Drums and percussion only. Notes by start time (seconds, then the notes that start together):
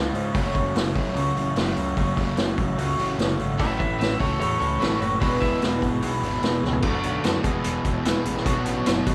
0.15 open hi-hat
0.35 kick, open hi-hat
0.55 kick, open hi-hat
0.75 snare, open hi-hat
0.96 kick, open hi-hat
1.16 open hi-hat
1.37 open hi-hat
1.56 snare, open hi-hat
1.77 open hi-hat
1.97 kick, open hi-hat
2.17 kick, open hi-hat
2.37 snare, open hi-hat
2.58 kick, open hi-hat
2.78 open hi-hat
2.99 open hi-hat
3.19 snare, open hi-hat
3.39 open hi-hat
3.60 kick, open hi-hat
3.80 kick, open hi-hat
4.01 snare, open hi-hat
4.20 kick, open hi-hat
4.41 open hi-hat
4.61 open hi-hat
4.82 snare, open hi-hat
5.02 open hi-hat
5.22 kick, open hi-hat
5.42 kick, open hi-hat
5.62 snare, open hi-hat
5.82 kick, open hi-hat
6.02 open hi-hat
6.23 open hi-hat
6.43 snare, open hi-hat
6.65 snare
6.73 floor tom
6.82 kick, crash
7.03 closed hi-hat
7.24 snare, closed hi-hat
7.44 kick, closed hi-hat
7.64 closed hi-hat
7.85 kick, closed hi-hat
8.05 snare, closed hi-hat
8.25 closed hi-hat
8.37 snare
8.46 kick, closed hi-hat
8.65 closed hi-hat
8.86 snare, closed hi-hat
9.06 kick, closed hi-hat